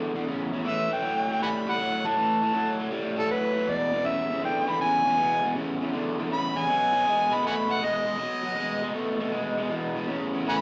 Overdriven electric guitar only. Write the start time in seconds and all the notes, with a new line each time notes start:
Already playing: E2 D3
0.15 E2 D3
0.27 E2 C#3
0.52 E2 C#3
0.64 A2 E3
0.90 A2 E3
1.02 A2 F#3
1.28 A2 F#3
1.41 A2 G3
1.67 A2 G3
1.78 A2 F#3
2.04 A2 F#3
2.16 A2 E3
2.42 A2 E3
2.53 A2 F#3
2.79 A2 F#3
2.91 A2 G3
3.16 A2 G3
3.28 A2 F#3
3.53 A2 F#3
3.66 E2 B2
3.92 E2 B2
4.04 E2 C#3
4.30 E2 C#3
4.41 E2 D3
4.67 E2 D3
4.79 E2 C#3
5.05 E2 C#3
5.17 E2 B2
5.42 E2 B2
5.54 E2 C#3
5.80 E2 C#3
5.92 E2 D3
6.18 E2 D3
6.29 E2 C#3
6.55 E2 C#3
6.67 B2 F#3
6.93 B2 F#3
7.04 B2 G#3
7.30 B2 G#3
7.42 B2 A3
7.67 B2 A3
7.80 B2 G#3
8.05 B2 G#3
8.18 B2 F#3
8.43 B2 F#3
8.55 B2 G#3
8.82 B2 G#3
8.94 B2 A3
9.19 B2 A3
9.31 B2 G#3
9.58 B2 G#3
9.69 E2 B2
9.95 E2 B2
10.07 E2 C#3
10.33 E2 C#3
10.45 A2 E3